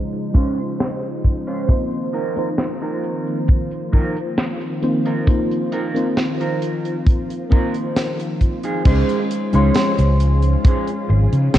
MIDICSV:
0, 0, Header, 1, 7, 480
1, 0, Start_track
1, 0, Key_signature, -5, "major"
1, 0, Tempo, 895522
1, 907, Time_signature, 4, 2, 24, 8
1, 6210, End_track
2, 0, Start_track
2, 0, Title_t, "Clean electric guitar"
2, 0, Program_c, 0, 27
2, 183, Note_on_c, 0, 61, 107
2, 186, Note_on_c, 0, 65, 96
2, 189, Note_on_c, 0, 72, 112
2, 309, Note_off_c, 0, 61, 0
2, 311, Note_off_c, 0, 65, 0
2, 312, Note_off_c, 0, 72, 0
2, 788, Note_on_c, 0, 61, 81
2, 790, Note_on_c, 0, 65, 73
2, 793, Note_on_c, 0, 72, 92
2, 905, Note_off_c, 0, 61, 0
2, 907, Note_off_c, 0, 65, 0
2, 908, Note_off_c, 0, 72, 0
2, 1143, Note_on_c, 0, 63, 102
2, 1146, Note_on_c, 0, 65, 100
2, 1149, Note_on_c, 0, 70, 117
2, 1327, Note_off_c, 0, 63, 0
2, 1329, Note_off_c, 0, 65, 0
2, 1330, Note_off_c, 0, 70, 0
2, 1508, Note_on_c, 0, 63, 80
2, 1511, Note_on_c, 0, 65, 75
2, 1514, Note_on_c, 0, 70, 92
2, 1808, Note_off_c, 0, 63, 0
2, 1809, Note_off_c, 0, 65, 0
2, 1811, Note_off_c, 0, 70, 0
2, 2103, Note_on_c, 0, 63, 107
2, 2105, Note_on_c, 0, 65, 100
2, 2108, Note_on_c, 0, 70, 119
2, 2229, Note_off_c, 0, 63, 0
2, 2230, Note_off_c, 0, 65, 0
2, 2232, Note_off_c, 0, 70, 0
2, 2708, Note_on_c, 0, 63, 81
2, 2712, Note_on_c, 0, 65, 77
2, 2714, Note_on_c, 0, 70, 90
2, 2888, Note_off_c, 0, 63, 0
2, 2889, Note_off_c, 0, 65, 0
2, 2891, Note_off_c, 0, 70, 0
2, 3065, Note_on_c, 0, 63, 107
2, 3068, Note_on_c, 0, 65, 99
2, 3070, Note_on_c, 0, 70, 117
2, 3248, Note_off_c, 0, 63, 0
2, 3250, Note_off_c, 0, 65, 0
2, 3251, Note_off_c, 0, 70, 0
2, 3430, Note_on_c, 0, 63, 82
2, 3432, Note_on_c, 0, 65, 75
2, 3435, Note_on_c, 0, 70, 93
2, 3729, Note_off_c, 0, 63, 0
2, 3730, Note_off_c, 0, 65, 0
2, 3731, Note_off_c, 0, 70, 0
2, 4025, Note_on_c, 0, 63, 108
2, 4029, Note_on_c, 0, 65, 98
2, 4031, Note_on_c, 0, 70, 116
2, 4151, Note_off_c, 0, 63, 0
2, 4152, Note_off_c, 0, 65, 0
2, 4153, Note_off_c, 0, 70, 0
2, 4630, Note_on_c, 0, 63, 83
2, 4633, Note_on_c, 0, 65, 77
2, 4635, Note_on_c, 0, 68, 93
2, 4742, Note_off_c, 0, 65, 0
2, 4744, Note_off_c, 0, 68, 0
2, 4746, Note_off_c, 0, 63, 0
2, 4746, Note_on_c, 0, 61, 112
2, 4748, Note_on_c, 0, 65, 104
2, 4751, Note_on_c, 0, 68, 106
2, 4751, Note_on_c, 0, 72, 127
2, 4929, Note_off_c, 0, 61, 0
2, 4930, Note_off_c, 0, 65, 0
2, 4931, Note_off_c, 0, 68, 0
2, 4931, Note_off_c, 0, 72, 0
2, 5109, Note_on_c, 0, 61, 89
2, 5112, Note_on_c, 0, 65, 80
2, 5113, Note_on_c, 0, 68, 81
2, 5116, Note_on_c, 0, 73, 100
2, 5408, Note_off_c, 0, 61, 0
2, 5409, Note_off_c, 0, 65, 0
2, 5410, Note_off_c, 0, 68, 0
2, 5411, Note_off_c, 0, 73, 0
2, 5704, Note_on_c, 0, 61, 89
2, 5708, Note_on_c, 0, 68, 83
2, 5709, Note_on_c, 0, 65, 82
2, 5712, Note_on_c, 0, 72, 98
2, 5830, Note_off_c, 0, 61, 0
2, 5831, Note_off_c, 0, 65, 0
2, 5832, Note_off_c, 0, 68, 0
2, 5833, Note_off_c, 0, 72, 0
2, 6210, End_track
3, 0, Start_track
3, 0, Title_t, "FM electric piano"
3, 0, Program_c, 1, 5
3, 0, Control_c, 1, 64, 127
3, 0, Note_on_c, 1, 56, 79
3, 0, Note_on_c, 1, 61, 71
3, 0, Note_on_c, 1, 63, 74
3, 0, Note_on_c, 1, 65, 75
3, 0, Note_on_c, 1, 72, 87
3, 155, Note_off_c, 1, 56, 0
3, 156, Note_off_c, 1, 61, 0
3, 159, Note_off_c, 1, 63, 0
3, 161, Note_off_c, 1, 65, 0
3, 162, Note_off_c, 1, 72, 0
3, 178, Note_on_c, 1, 56, 76
3, 183, Note_on_c, 1, 61, 69
3, 187, Note_on_c, 1, 63, 70
3, 191, Note_on_c, 1, 65, 72
3, 195, Note_on_c, 1, 72, 83
3, 875, Note_off_c, 1, 56, 0
3, 877, Note_off_c, 1, 61, 0
3, 879, Note_off_c, 1, 63, 0
3, 881, Note_off_c, 1, 65, 0
3, 883, Note_off_c, 1, 72, 0
3, 903, Note_on_c, 1, 58, 89
3, 905, Note_on_c, 1, 60, 81
3, 906, Note_on_c, 1, 63, 82
3, 909, Note_on_c, 1, 65, 82
3, 910, Note_on_c, 1, 72, 95
3, 915, Control_c, 1, 64, 0
3, 1014, Control_c, 1, 64, 127
3, 1239, Note_off_c, 1, 58, 0
3, 1240, Note_off_c, 1, 60, 0
3, 1241, Note_off_c, 1, 63, 0
3, 1242, Note_off_c, 1, 65, 0
3, 1243, Note_off_c, 1, 72, 0
3, 1263, Note_on_c, 1, 58, 76
3, 1268, Note_on_c, 1, 60, 72
3, 1271, Note_on_c, 1, 63, 72
3, 1276, Note_on_c, 1, 65, 70
3, 1279, Note_on_c, 1, 72, 88
3, 2555, Note_off_c, 1, 58, 0
3, 2557, Note_off_c, 1, 60, 0
3, 2559, Note_off_c, 1, 63, 0
3, 2561, Note_off_c, 1, 65, 0
3, 2563, Note_off_c, 1, 72, 0
3, 2583, Note_on_c, 1, 58, 75
3, 2586, Note_on_c, 1, 60, 69
3, 2588, Note_on_c, 1, 63, 67
3, 2589, Note_on_c, 1, 65, 69
3, 2592, Note_on_c, 1, 72, 81
3, 2797, Note_off_c, 1, 58, 0
3, 2799, Note_off_c, 1, 60, 0
3, 2800, Note_off_c, 1, 63, 0
3, 2800, Note_off_c, 1, 65, 0
3, 2802, Note_off_c, 1, 72, 0
3, 2823, Note_on_c, 1, 58, 91
3, 2826, Note_on_c, 1, 60, 86
3, 2827, Note_on_c, 1, 63, 84
3, 2830, Note_on_c, 1, 65, 82
3, 2832, Note_on_c, 1, 72, 101
3, 3159, Note_off_c, 1, 58, 0
3, 3161, Note_off_c, 1, 60, 0
3, 3161, Note_off_c, 1, 63, 0
3, 3163, Note_off_c, 1, 65, 0
3, 3164, Note_off_c, 1, 72, 0
3, 3184, Note_on_c, 1, 58, 78
3, 3188, Note_on_c, 1, 60, 74
3, 3192, Note_on_c, 1, 63, 73
3, 3197, Note_on_c, 1, 65, 76
3, 3200, Note_on_c, 1, 72, 89
3, 3996, Note_off_c, 1, 58, 0
3, 3998, Note_off_c, 1, 60, 0
3, 4000, Note_off_c, 1, 63, 0
3, 4002, Note_off_c, 1, 65, 0
3, 4004, Note_off_c, 1, 72, 0
3, 4019, Note_on_c, 1, 58, 79
3, 4023, Note_on_c, 1, 60, 71
3, 4027, Note_on_c, 1, 63, 72
3, 4031, Note_on_c, 1, 65, 73
3, 4035, Note_on_c, 1, 72, 87
3, 4715, Note_off_c, 1, 58, 0
3, 4717, Note_off_c, 1, 60, 0
3, 4719, Note_off_c, 1, 63, 0
3, 4721, Note_off_c, 1, 65, 0
3, 4723, Note_off_c, 1, 72, 0
3, 4744, Note_on_c, 1, 56, 97
3, 4746, Note_on_c, 1, 61, 88
3, 4749, Note_on_c, 1, 63, 85
3, 4750, Note_on_c, 1, 65, 89
3, 4752, Note_on_c, 1, 72, 108
3, 4754, Control_c, 1, 64, 0
3, 4853, Control_c, 1, 64, 127
3, 5080, Note_off_c, 1, 56, 0
3, 5081, Note_off_c, 1, 61, 0
3, 5082, Note_off_c, 1, 63, 0
3, 5083, Note_off_c, 1, 65, 0
3, 5084, Note_off_c, 1, 72, 0
3, 5104, Note_on_c, 1, 56, 80
3, 5108, Note_on_c, 1, 61, 74
3, 5112, Note_on_c, 1, 63, 76
3, 5116, Note_on_c, 1, 65, 77
3, 5121, Note_on_c, 1, 84, 92
3, 6210, Note_off_c, 1, 56, 0
3, 6210, Note_off_c, 1, 61, 0
3, 6210, Note_off_c, 1, 63, 0
3, 6210, Note_off_c, 1, 65, 0
3, 6210, Note_off_c, 1, 84, 0
3, 6210, End_track
4, 0, Start_track
4, 0, Title_t, "String machine"
4, 0, Program_c, 2, 50
4, 0, Note_on_c, 2, 49, 80
4, 0, Note_on_c, 2, 53, 71
4, 0, Note_on_c, 2, 56, 72
4, 0, Note_on_c, 2, 63, 87
4, 0, Note_on_c, 2, 72, 72
4, 885, Note_off_c, 2, 49, 0
4, 885, Note_off_c, 2, 56, 0
4, 889, Note_off_c, 2, 63, 0
4, 904, Note_on_c, 2, 51, 82
4, 904, Note_on_c, 2, 58, 71
4, 905, Note_on_c, 2, 65, 86
4, 4724, Note_off_c, 2, 51, 0
4, 4724, Note_off_c, 2, 58, 0
4, 4725, Note_off_c, 2, 53, 0
4, 4725, Note_off_c, 2, 65, 0
4, 4726, Note_off_c, 2, 72, 0
4, 4747, Note_on_c, 2, 53, 77
4, 4747, Note_on_c, 2, 56, 76
4, 4747, Note_on_c, 2, 61, 75
4, 4747, Note_on_c, 2, 65, 91
4, 6210, Note_off_c, 2, 53, 0
4, 6210, Note_off_c, 2, 56, 0
4, 6210, Note_off_c, 2, 61, 0
4, 6210, Note_off_c, 2, 65, 0
4, 6210, End_track
5, 0, Start_track
5, 0, Title_t, "Fretless electric bass"
5, 0, Program_c, 3, 35
5, 4746, Note_on_c, 3, 37, 103
5, 4834, Note_off_c, 3, 37, 0
5, 5113, Note_on_c, 3, 37, 79
5, 5194, Note_off_c, 3, 37, 0
5, 5352, Note_on_c, 3, 37, 81
5, 5653, Note_off_c, 3, 37, 0
5, 5947, Note_on_c, 3, 32, 97
5, 6035, Note_off_c, 3, 32, 0
5, 6071, Note_on_c, 3, 49, 88
5, 6153, Note_off_c, 3, 49, 0
5, 6187, Note_on_c, 3, 37, 95
5, 6210, Note_off_c, 3, 37, 0
5, 6210, End_track
6, 0, Start_track
6, 0, Title_t, "Muted clean electric guitar strokes"
6, 424, Note_on_c, 9, 29, 32
6, 478, Note_off_c, 9, 29, 0
6, 548, Note_on_c, 9, 29, 31
6, 602, Note_off_c, 9, 29, 0
6, 2344, Note_on_c, 9, 29, 32
6, 2398, Note_off_c, 9, 29, 0
6, 2469, Note_on_c, 9, 29, 32
6, 2522, Note_off_c, 9, 29, 0
6, 4267, Note_on_c, 9, 29, 32
6, 4320, Note_off_c, 9, 29, 0
6, 4390, Note_on_c, 9, 29, 32
6, 4444, Note_off_c, 9, 29, 0
6, 5945, Note_on_c, 9, 29, 90
6, 5998, Note_off_c, 9, 29, 0
6, 6069, Note_on_c, 9, 29, 34
6, 6123, Note_off_c, 9, 29, 0
6, 6210, End_track
7, 0, Start_track
7, 0, Title_t, "Drums"
7, 68, Note_on_c, 9, 42, 57
7, 122, Note_off_c, 9, 42, 0
7, 186, Note_on_c, 9, 36, 113
7, 240, Note_off_c, 9, 36, 0
7, 311, Note_on_c, 9, 42, 54
7, 365, Note_off_c, 9, 42, 0
7, 428, Note_on_c, 9, 42, 87
7, 430, Note_on_c, 9, 38, 115
7, 482, Note_off_c, 9, 42, 0
7, 484, Note_off_c, 9, 38, 0
7, 549, Note_on_c, 9, 42, 53
7, 603, Note_off_c, 9, 42, 0
7, 667, Note_on_c, 9, 36, 60
7, 667, Note_on_c, 9, 42, 76
7, 720, Note_off_c, 9, 36, 0
7, 721, Note_off_c, 9, 42, 0
7, 788, Note_on_c, 9, 42, 53
7, 842, Note_off_c, 9, 42, 0
7, 905, Note_on_c, 9, 36, 122
7, 906, Note_on_c, 9, 42, 94
7, 959, Note_off_c, 9, 36, 0
7, 959, Note_off_c, 9, 42, 0
7, 1028, Note_on_c, 9, 42, 51
7, 1081, Note_off_c, 9, 42, 0
7, 1148, Note_on_c, 9, 42, 75
7, 1202, Note_off_c, 9, 42, 0
7, 1268, Note_on_c, 9, 42, 57
7, 1322, Note_off_c, 9, 42, 0
7, 1384, Note_on_c, 9, 38, 106
7, 1387, Note_on_c, 9, 42, 89
7, 1437, Note_off_c, 9, 38, 0
7, 1440, Note_off_c, 9, 42, 0
7, 1516, Note_on_c, 9, 42, 52
7, 1570, Note_off_c, 9, 42, 0
7, 1628, Note_on_c, 9, 42, 77
7, 1681, Note_off_c, 9, 42, 0
7, 1753, Note_on_c, 9, 42, 56
7, 1806, Note_off_c, 9, 42, 0
7, 1865, Note_on_c, 9, 42, 101
7, 1869, Note_on_c, 9, 36, 127
7, 1918, Note_off_c, 9, 42, 0
7, 1922, Note_off_c, 9, 36, 0
7, 1989, Note_on_c, 9, 42, 52
7, 2043, Note_off_c, 9, 42, 0
7, 2107, Note_on_c, 9, 36, 68
7, 2161, Note_off_c, 9, 36, 0
7, 2232, Note_on_c, 9, 42, 54
7, 2286, Note_off_c, 9, 42, 0
7, 2346, Note_on_c, 9, 38, 114
7, 2346, Note_on_c, 9, 42, 97
7, 2399, Note_off_c, 9, 38, 0
7, 2399, Note_off_c, 9, 42, 0
7, 2471, Note_on_c, 9, 42, 52
7, 2524, Note_off_c, 9, 42, 0
7, 2586, Note_on_c, 9, 42, 66
7, 2640, Note_off_c, 9, 42, 0
7, 2709, Note_on_c, 9, 42, 58
7, 2763, Note_off_c, 9, 42, 0
7, 2826, Note_on_c, 9, 36, 124
7, 2830, Note_on_c, 9, 42, 97
7, 2880, Note_off_c, 9, 36, 0
7, 2883, Note_off_c, 9, 42, 0
7, 2954, Note_on_c, 9, 42, 55
7, 3008, Note_off_c, 9, 42, 0
7, 3066, Note_on_c, 9, 42, 72
7, 3120, Note_off_c, 9, 42, 0
7, 3195, Note_on_c, 9, 42, 57
7, 3249, Note_off_c, 9, 42, 0
7, 3307, Note_on_c, 9, 38, 106
7, 3308, Note_on_c, 9, 42, 88
7, 3361, Note_off_c, 9, 38, 0
7, 3362, Note_off_c, 9, 42, 0
7, 3434, Note_on_c, 9, 42, 51
7, 3487, Note_off_c, 9, 42, 0
7, 3548, Note_on_c, 9, 42, 80
7, 3602, Note_off_c, 9, 42, 0
7, 3672, Note_on_c, 9, 42, 51
7, 3725, Note_off_c, 9, 42, 0
7, 3787, Note_on_c, 9, 36, 126
7, 3790, Note_on_c, 9, 42, 89
7, 3840, Note_off_c, 9, 36, 0
7, 3843, Note_off_c, 9, 42, 0
7, 3914, Note_on_c, 9, 42, 53
7, 3967, Note_off_c, 9, 42, 0
7, 4030, Note_on_c, 9, 36, 100
7, 4084, Note_off_c, 9, 36, 0
7, 4151, Note_on_c, 9, 42, 52
7, 4205, Note_off_c, 9, 42, 0
7, 4270, Note_on_c, 9, 38, 125
7, 4271, Note_on_c, 9, 42, 97
7, 4324, Note_off_c, 9, 38, 0
7, 4325, Note_off_c, 9, 42, 0
7, 4394, Note_on_c, 9, 42, 55
7, 4447, Note_off_c, 9, 42, 0
7, 4508, Note_on_c, 9, 36, 62
7, 4508, Note_on_c, 9, 42, 65
7, 4561, Note_off_c, 9, 36, 0
7, 4562, Note_off_c, 9, 42, 0
7, 4629, Note_on_c, 9, 42, 55
7, 4682, Note_off_c, 9, 42, 0
7, 4744, Note_on_c, 9, 49, 110
7, 4746, Note_on_c, 9, 36, 117
7, 4748, Note_on_c, 9, 42, 112
7, 4798, Note_off_c, 9, 49, 0
7, 4800, Note_off_c, 9, 36, 0
7, 4801, Note_off_c, 9, 42, 0
7, 4872, Note_on_c, 9, 42, 62
7, 4926, Note_off_c, 9, 42, 0
7, 4989, Note_on_c, 9, 42, 81
7, 5042, Note_off_c, 9, 42, 0
7, 5107, Note_on_c, 9, 42, 54
7, 5161, Note_off_c, 9, 42, 0
7, 5222, Note_on_c, 9, 42, 101
7, 5229, Note_on_c, 9, 38, 125
7, 5276, Note_off_c, 9, 42, 0
7, 5282, Note_off_c, 9, 38, 0
7, 5351, Note_on_c, 9, 42, 63
7, 5405, Note_off_c, 9, 42, 0
7, 5466, Note_on_c, 9, 42, 79
7, 5520, Note_off_c, 9, 42, 0
7, 5587, Note_on_c, 9, 42, 54
7, 5641, Note_off_c, 9, 42, 0
7, 5707, Note_on_c, 9, 36, 127
7, 5707, Note_on_c, 9, 42, 103
7, 5760, Note_off_c, 9, 42, 0
7, 5761, Note_off_c, 9, 36, 0
7, 5829, Note_on_c, 9, 42, 60
7, 5883, Note_off_c, 9, 42, 0
7, 6071, Note_on_c, 9, 42, 58
7, 6125, Note_off_c, 9, 42, 0
7, 6186, Note_on_c, 9, 38, 127
7, 6186, Note_on_c, 9, 42, 109
7, 6210, Note_off_c, 9, 38, 0
7, 6210, Note_off_c, 9, 42, 0
7, 6210, End_track
0, 0, End_of_file